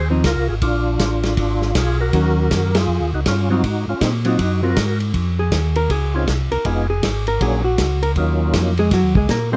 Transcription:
0.00 0.23 D#2 medium
0.10 0.23 F3 medium
0.10 0.23 C4 medium
0.10 0.23 D#4 medium
0.24 0.36 C#2 medium
0.24 0.47 F4 medium
0.24 0.47 A#4 medium
0.24 kick soft
0.24 snare medium
0.24 hi-hat pedal soft
0.24 ride medium
0.36 0.49 C2 medium
0.49 0.61 G#1 medium
0.49 0.55 F4 medium
0.49 0.55 G#4 medium
0.62 0.98 A#1 medium
0.62 1.71 D4 medium
0.62 1.76 F4 medium
0.62 kick soft
0.62 ride medium
0.99 1.36 A1 medium
0.99 kick soft
0.99 snare medium
0.99 hi-hat pedal medium
0.99 ride medium
1.23 snare soft
1.23 ride soft
1.37 1.74 G#1 medium
1.37 kick soft
1.37 ride medium
1.62 snare soft
1.75 2.12 B1 loud
1.75 1.98 F4 medium
1.75 2.00 G#4 medium
1.75 kick soft
1.75 snare medium
1.75 hi-hat pedal medium
1.75 ride medium
2.01 2.71 F#4 medium
2.01 2.77 A#4 medium
2.13 2.49 D#2 medium
2.13 2.70 D#3 medium
2.13 2.70 F#3 medium
2.13 2.70 C#4 medium
2.13 kick soft
2.13 ride medium
2.51 2.87 F#2 medium
2.51 kick soft
2.51 snare medium
2.51 hi-hat pedal medium
2.51 ride medium
2.75 3.11 F4 medium
2.75 3.10 G#4 loud
2.75 snare medium
2.75 ride medium
2.88 3.00 F2 medium
3.01 3.13 D#2 soft
3.13 3.25 C#2 medium
3.13 3.21 D#4 medium
3.13 3.20 F#4 medium
3.26 3.63 G2 medium
3.26 3.49 C#4 medium
3.26 3.49 F4 medium
3.26 kick soft
3.26 snare medium
3.26 hi-hat pedal medium
3.26 ride medium
3.50 3.62 F#3 medium
3.50 3.63 C4 medium
3.50 3.86 D#4 medium
3.50 3.63 F4 medium
3.50 3.85 F#4 medium
3.63 3.86 G#2 medium
3.63 kick soft
3.63 ride medium
3.87 3.94 G#2 soft
3.87 4.02 C#4 medium
3.87 4.01 F4 medium
4.01 4.38 A#2 medium
4.01 4.14 C4 medium
4.01 4.13 D#4 medium
4.01 kick soft
4.01 snare medium
4.01 hi-hat pedal medium
4.01 ride medium
4.25 4.37 F#3 medium
4.25 4.38 C4 medium
4.25 4.61 D#4 medium
4.25 4.38 F4 medium
4.25 4.61 F#4 medium
4.25 ride medium
4.38 4.75 F#2 medium
4.38 kick soft
4.38 ride medium
4.63 4.75 F#3 medium
4.63 4.75 C4 medium
4.63 4.76 F4 medium
4.63 4.99 F#4 medium
4.63 4.98 A#4 medium
4.76 5.13 G#2 medium
4.76 kick soft
4.76 snare medium
4.76 hi-hat pedal medium
4.76 ride medium
5.00 ride soft
5.14 5.51 F2 medium
5.14 kick soft
5.14 ride medium
5.39 5.74 G#4 medium
5.52 5.88 D#2 medium
5.52 kick soft
5.52 snare medium
5.52 hi-hat pedal medium
5.52 ride medium
5.75 5.90 A#4 medium
5.75 ride soft
5.89 6.26 C#2 medium
5.89 6.14 G#4 medium
5.89 kick soft
5.89 ride medium
6.14 6.27 C4 medium
6.14 6.27 C#4 medium
6.14 6.27 D#4 medium
6.14 6.52 F4 medium
6.14 6.27 F4 medium
6.14 6.27 G#4 medium
6.27 6.50 C2 medium
6.27 kick soft
6.27 snare medium
6.27 hi-hat pedal medium
6.27 ride medium
6.51 6.58 C2 soft
6.51 6.65 A#4 medium
6.51 ride soft
6.65 7.02 F1 medium
6.65 6.87 G#3 medium
6.65 6.87 B3 medium
6.65 6.87 D#4 medium
6.65 6.87 F4 soft
6.65 6.87 G#4 medium
6.65 kick soft
6.65 ride medium
6.90 7.25 G#4 medium
7.03 7.39 G#1 medium
7.03 kick soft
7.03 snare medium
7.03 hi-hat pedal medium
7.03 ride medium
7.27 7.41 A#4 loud
7.27 ride soft
7.40 7.77 A#1 medium
7.40 7.62 F#3 soft
7.40 7.62 A#3 soft
7.40 7.63 C#4 soft
7.40 7.63 D4 soft
7.40 7.63 G#4 medium
7.40 7.64 G#4 medium
7.40 kick soft
7.40 ride medium
7.64 8.00 F#4 medium
7.78 8.15 C#2 medium
7.78 kick soft
7.78 snare medium
7.78 hi-hat pedal medium
7.78 ride medium
8.03 8.11 A#4 medium
8.03 ride soft
8.16 8.52 D#2 medium
8.16 8.74 F#3 medium
8.16 8.74 A#3 soft
8.16 8.74 C#4 soft
8.16 8.74 D#4 soft
8.16 8.74 F4 medium
8.16 kick soft
8.16 ride soft
8.53 8.90 F2 medium
8.53 kick soft
8.53 snare medium
8.53 hi-hat pedal medium
8.53 ride medium
8.77 8.92 G#3 medium
8.77 8.92 G#4 medium
8.77 ride soft
8.91 9.04 F#2 medium
8.91 9.16 F#3 medium
8.91 9.16 F#4 medium
8.91 kick soft
8.91 snare soft
8.91 ride medium
9.03 9.16 D#2 soft
9.15 9.28 C#2 medium
9.15 9.30 G#3 medium
9.15 9.29 G#4 medium
9.15 kick soft
9.29 9.57 A#2 medium
9.29 9.53 A#3 medium
9.29 9.53 A#4 medium
9.29 kick soft
9.29 snare medium
9.29 hi-hat pedal medium
9.29 ride medium
9.53 9.57 G#3 medium
9.53 9.57 A#3 medium
9.53 9.57 B3 medium
9.53 9.57 C4 medium
9.53 9.57 C5 loud

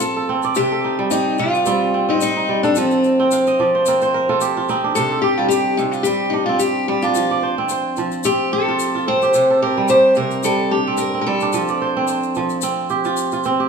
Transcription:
0.00 0.60 F3 medium
0.00 0.29 C4 medium
0.00 1.40 F4 medium
0.00 0.26 A4 medium
0.00 shaker medium
0.17 0.71 A4 medium
0.29 1.66 C4 medium
0.42 0.90 D5 medium
0.42 shaker soft
0.55 1.38 C3 medium
0.55 1.13 G4 medium
0.55 shaker soft
0.72 2.04 A4 medium
0.84 2.36 D#4 medium
0.99 1.65 G3 medium
1.11 1.36 D#4 medium
1.11 2.53 G4 medium
1.11 shaker medium
1.38 2.81 C3 medium
1.38 2.11 F4 medium
1.38 shaker soft
1.54 shaker soft
1.66 2.48 G3 medium
1.66 1.94 C4 medium
1.66 shaker medium
1.94 2.08 C4 medium
2.09 3.19 C4 medium
2.09 2.21 D#4 medium
2.21 2.61 D#4 medium
2.21 shaker medium
2.37 3.66 D#4 medium
2.49 2.81 G3 medium
2.63 2.76 D4 medium
2.63 3.94 A4 medium
2.63 shaker soft
2.75 3.58 F3 medium
2.75 4.38 C4 medium
2.75 shaker medium
2.91 shaker soft
3.04 shaker soft
3.19 3.88 C4 medium
3.19 4.13 G5 medium
3.31 4.32 F5 medium
3.31 shaker medium
3.47 4.54 D#5 medium
3.47 shaker soft
3.60 5.01 F3 medium
3.60 4.75 D5 medium
3.75 4.02 C5 medium
3.86 4.69 C4 medium
3.86 4.14 A#4 medium
3.86 shaker medium
4.01 5.21 C5 medium
4.01 shaker soft
4.14 5.18 A#4 medium
4.29 4.57 F4 medium
4.29 5.11 A4 medium
4.41 5.23 G4 medium
4.41 shaker medium
4.57 6.08 F4 medium
4.68 6.49 C4 medium
4.68 6.32 D#4 medium
4.68 shaker soft
4.84 6.33 D4 medium
4.95 5.77 C3 medium
4.95 5.21 A4 medium
4.95 shaker medium
5.12 6.43 A4 medium
5.22 5.37 G4 medium
5.22 5.51 G4 medium
5.37 6.05 G3 medium
5.37 5.48 F4 medium
5.49 5.75 G4 medium
5.49 6.93 G4 medium
5.49 shaker medium
5.77 7.20 C3 medium
5.77 5.82 D#4 medium
5.77 shaker soft
5.91 6.05 F4 medium
5.91 shaker soft
6.03 6.87 G3 medium
6.03 6.33 G4 medium
6.03 shaker medium
6.30 7.03 D4 medium
6.30 6.45 D#4 medium
6.46 7.58 C4 medium
6.46 6.60 F4 medium
6.59 6.85 G4 medium
6.59 shaker medium
6.88 7.20 G3 medium
6.88 7.04 G4 medium
7.02 8.72 D4 medium
7.02 7.54 F4 medium
7.02 shaker soft
7.15 7.97 F3 medium
7.15 shaker medium
7.31 8.42 D5 medium
7.43 7.70 C5 medium
7.58 8.25 C4 medium
7.69 8.90 C5 medium
7.69 shaker medium
7.96 9.39 F3 medium
7.96 shaker soft
8.12 shaker soft
8.24 9.07 C4 medium
8.24 8.53 G4 medium
8.24 shaker medium
8.52 9.22 G4 medium
8.52 9.03 A4 medium
8.68 8.95 F4 medium
8.79 shaker medium
8.95 10.46 F4 medium
9.08 10.87 C4 medium
9.08 9.62 C5 loud
9.22 9.62 G4 medium
9.22 shaker soft
9.34 10.16 C3 medium
9.34 shaker medium
9.50 10.82 A4 medium
9.62 9.90 G4 medium
9.62 9.87 A#4 medium
9.77 10.44 G3 medium
9.88 11.32 G4 medium
9.88 10.15 C5 medium
9.88 shaker medium
10.15 11.58 C3 medium
10.15 10.44 A#4 medium
10.15 shaker soft
10.31 shaker soft
10.43 11.26 G3 medium
10.43 10.72 A4 medium
10.43 shaker medium
10.71 11.42 D4 medium
10.71 10.99 G4 medium
10.87 11.14 C4 medium
10.97 11.20 A#4 medium
10.97 shaker medium
11.14 11.96 C4 medium
11.21 11.26 A#4 medium
11.26 11.58 G3 medium
11.26 12.58 A4 medium
11.40 13.10 D4 medium
11.40 shaker soft
11.53 12.35 F3 medium
11.53 shaker medium
11.68 12.80 D5 medium
11.68 shaker soft
11.82 12.09 C5 medium
11.97 12.63 C4 medium
12.08 13.28 C5 medium
12.08 shaker medium
12.23 shaker soft
12.35 13.69 F3 medium
12.35 shaker soft
12.49 shaker soft
12.61 13.45 C4 medium
12.61 shaker medium
12.89 13.59 G4 medium
12.89 shaker soft
13.04 13.32 F4 medium
13.04 shaker soft
13.17 shaker medium
13.31 13.69 F4 medium
13.31 shaker soft
13.44 13.69 C4 medium
13.44 shaker soft
13.60 13.69 G4 medium

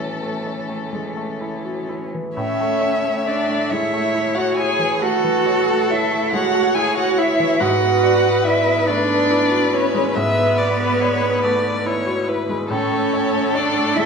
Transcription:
0.00 2.11 E3 soft
0.00 2.14 E3 soft
0.00 0.93 G#3 soft
0.00 0.22 A3 soft
0.00 2.11 C#4 soft
0.00 1.41 E4 soft
0.00 1.65 F#4 soft
0.00 1.89 A4 soft
0.00 0.36 C#5 soft
0.22 0.60 A3 soft
0.46 0.84 C#5 soft
0.69 1.07 A3 soft
0.93 1.16 G#3 soft
1.17 1.55 A3 soft
1.41 1.80 E4 soft
1.65 1.89 F#4 soft
1.89 2.27 E4 soft
2.14 2.37 E3 soft
2.36 4.99 A2 soft
2.36 3.22 C#4 medium
2.36 3.28 C#5 medium
2.36 3.73 E5 medium
2.61 2.96 A3 soft
2.81 3.17 C#5 soft
3.04 3.40 A3 soft
3.26 3.73 D4 medium
3.26 3.62 C#5 soft
3.26 3.72 D5 medium
3.49 3.84 A3 soft
3.70 3.93 G#3 soft
3.70 4.40 E4 medium
3.70 5.05 C#5 medium
3.70 4.36 E5 medium
3.93 4.28 A3 soft
4.15 4.49 E4 soft
4.35 4.58 F#4 soft
4.35 4.61 F#4 medium
4.35 4.56 F#5 medium
4.57 4.93 E4 soft
4.57 5.04 G#4 medium
4.57 5.01 G#5 medium
4.79 5.16 E3 soft
5.02 5.38 A3 soft
5.02 5.92 F#4 medium
5.02 6.34 A4 medium
5.02 5.92 F#5 medium
5.24 5.60 E3 soft
5.46 5.82 C#5 soft
5.68 6.03 A3 soft
5.90 6.36 E4 medium
5.90 6.25 C#5 soft
5.90 6.32 E5 medium
6.11 6.46 A3 soft
6.33 6.55 G#3 soft
6.33 6.78 F#4 medium
6.33 7.58 C#5 medium
6.33 6.76 F#5 medium
6.55 6.89 A3 soft
6.75 7.09 E4 soft
6.75 6.97 G#4 medium
6.75 6.96 G#5 medium
6.97 7.18 F#4 soft
6.97 7.20 F#4 medium
6.97 7.20 F#5 medium
7.18 7.62 E4 medium
7.18 7.52 E4 soft
7.18 7.62 E5 medium
7.40 7.61 E3 soft
7.61 10.12 G#2 medium
7.61 8.44 F#4 medium
7.61 10.17 B4 medium
7.61 8.46 F#5 medium
7.81 8.15 B3 soft
8.03 8.37 D5 soft
8.25 8.58 B3 soft
8.45 8.89 E4 medium
8.45 8.79 D5 soft
8.45 8.89 E5 medium
8.66 9.00 B3 soft
8.87 9.09 A3 soft
8.87 9.74 D4 medium
8.87 9.75 D5 medium
9.08 9.43 B3 soft
9.30 9.64 E4 soft
9.51 9.73 F#4 soft
9.72 10.17 C#4 medium
9.72 10.07 E4 soft
9.72 10.18 C#5 medium
9.95 10.28 G#3 soft
10.15 12.67 G#2 soft
10.15 12.28 B3 medium
10.15 12.29 B4 medium
10.15 10.59 E5 medium
10.38 10.72 B3 soft
10.58 11.02 D5 medium
10.58 10.93 D5 soft
10.80 11.14 B3 soft
11.01 11.42 C#5 medium
11.01 11.35 D5 soft
11.22 11.56 B3 medium
11.43 11.65 A3 soft
11.43 11.88 D5 medium
11.65 11.99 B3 soft
11.86 12.20 E4 soft
11.86 12.30 C#5 medium
12.07 12.28 F#4 soft
12.28 12.62 E4 medium
12.28 12.69 B4 medium
12.49 12.70 G#3 soft
12.68 14.06 A2 medium
12.68 13.54 C#4 medium
12.68 14.06 A4 medium
12.68 13.58 C#5 medium
12.92 13.26 A3 soft
13.13 13.47 C#5 medium
13.34 13.68 A3 soft
13.53 13.97 D4 medium
13.53 13.89 C#5 soft
13.53 13.98 D5 medium
13.75 14.06 A3 soft
13.95 14.06 G#3 soft
13.95 14.06 E4 medium
13.95 14.06 E5 medium

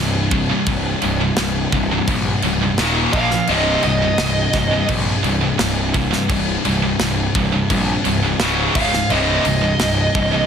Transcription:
0.00 0.50 C1 medium
0.00 0.29 C2 medium
0.00 0.29 G2 medium
0.00 0.65 C3 medium
0.31 0.50 C2 medium
0.31 0.50 G2 medium
0.31 kick medium
0.31 crash medium
0.51 0.67 C2 medium
0.51 0.67 G2 medium
0.67 0.93 C1 loud
0.67 0.99 C2 medium
0.67 1.00 G2 loud
0.67 1.71 C3 loud
0.67 kick loud
0.67 crash medium
1.02 1.29 C1 medium
1.02 1.20 C2 medium
1.02 1.20 G2 medium
1.02 crash medium
1.21 1.37 C2 medium
1.21 1.38 G2 medium
1.37 1.65 C1 medium
1.37 1.70 C2 medium
1.37 1.70 G2 medium
1.37 snare loud
1.37 crash medium
1.72 1.99 C1 medium
1.72 1.91 C2 medium
1.72 1.91 G2 medium
1.72 2.76 C3 loud
1.72 kick medium
1.72 crash medium
1.92 2.08 C2 medium
1.92 2.09 G2 medium
2.08 2.34 A#1 loud
2.08 2.41 C2 medium
2.08 2.41 G2 medium
2.08 kick loud
2.08 crash medium
2.42 2.70 C#1 medium
2.42 2.62 C2 medium
2.42 2.61 G2 medium
2.42 crash medium
2.62 2.79 C2 medium
2.62 2.79 G2 medium
2.78 3.06 D#1 medium
2.78 3.12 D#2 medium
2.78 3.12 A#2 loud
2.78 3.12 D#3 medium
2.78 snare loud
2.78 crash medium
3.13 3.40 A#1 medium
3.13 3.30 A#2 medium
3.13 3.30 F3 loud
3.13 3.30 A#3 medium
3.13 3.47 F5 loud
3.13 kick loud
3.13 crash medium
3.31 3.49 A#2 medium
3.31 3.49 F3 medium
3.31 snare soft
3.47 3.75 C1 loud
3.47 3.82 C2 medium
3.47 3.82 G2 loud
3.47 3.82 C3 loud
3.47 3.83 D#5 medium
3.47 crash medium
3.83 4.11 C1 medium
3.83 4.01 C2 medium
3.83 4.01 G2 medium
3.83 4.85 D#5 loud
3.83 crash medium
4.02 4.17 C2 medium
4.02 4.18 G2 medium
4.18 4.46 C1 medium
4.18 4.51 C2 medium
4.18 4.51 G2 medium
4.18 snare loud
4.18 crash medium
4.53 4.80 C1 medium
4.53 4.72 C2 medium
4.53 4.71 G2 medium
4.53 5.58 C3 medium
4.53 kick medium
4.53 snare soft
4.53 crash medium
4.73 4.89 C2 medium
4.73 4.90 G2 medium
4.88 5.15 A#1 medium
4.88 5.21 C2 medium
4.88 5.22 G2 medium
4.88 kick medium
4.88 crash medium
5.24 5.51 C1 medium
5.24 5.42 C2 medium
5.24 5.42 G2 medium
5.24 crash medium
5.43 5.60 C2 medium
5.43 5.60 G2 medium
5.59 6.13 C1 medium
5.59 5.92 C2 medium
5.59 5.92 G2 medium
5.59 6.28 C3 medium
5.59 snare loud
5.59 crash medium
5.94 6.12 C2 medium
5.94 6.12 G2 medium
5.94 kick medium
5.94 crash medium
6.13 6.29 C2 medium
6.13 6.30 G2 medium
6.13 snare soft
6.29 6.56 C1 loud
6.29 6.62 C2 medium
6.29 6.62 G2 medium
6.29 7.33 C3 medium
6.29 kick loud
6.29 crash medium
6.65 6.92 C1 medium
6.65 6.82 C2 medium
6.65 6.82 G2 medium
6.65 crash medium
6.83 6.99 C2 medium
6.83 6.99 G2 medium
7.00 7.27 C1 medium
7.00 7.32 C2 medium
7.00 7.32 G2 medium
7.00 snare loud
7.00 crash medium
7.35 7.61 C1 medium
7.35 7.53 C2 medium
7.35 7.52 G2 medium
7.35 8.38 C3 medium
7.35 kick medium
7.35 crash medium
7.54 7.70 C2 medium
7.54 7.70 G2 medium
7.70 7.96 A#1 loud
7.70 8.02 C2 medium
7.70 8.02 G2 medium
7.70 kick medium
7.70 crash medium
8.05 8.32 C1 medium
8.05 8.24 C2 medium
8.05 8.23 G2 medium
8.05 crash medium
8.24 8.41 C2 medium
8.24 8.41 G2 medium
8.40 8.67 C#1 medium
8.40 8.74 C#2 medium
8.40 8.74 G#2 medium
8.40 8.74 C#3 loud
8.40 snare loud
8.40 crash medium
8.75 9.02 C#1 medium
8.75 8.92 C#2 medium
8.75 8.92 G#2 medium
8.75 8.92 C#3 medium
8.75 9.10 F5 loud
8.75 kick loud
8.75 crash loud
8.93 9.11 C#2 medium
8.93 9.11 G#2 medium
8.93 snare soft
9.10 9.37 C1 loud
9.10 9.44 C2 loud
9.10 9.44 G2 loud
9.10 9.44 C3 loud
9.10 9.43 D#5 medium
9.10 crash medium
9.45 9.72 C1 medium
9.45 9.63 C2 medium
9.45 9.62 G2 medium
9.45 10.46 D#5 medium
9.45 crash medium
9.64 9.80 C2 medium
9.64 9.81 G2 medium
9.80 10.07 C1 medium
9.80 10.12 C2 medium
9.80 10.13 G2 medium
9.80 snare loud
9.80 crash medium
10.15 10.41 C1 medium
10.15 10.33 C2 medium
10.15 10.33 G2 medium
10.15 10.46 C3 medium
10.15 kick medium
10.15 crash medium
10.34 10.46 C2 medium
10.34 10.46 G2 medium

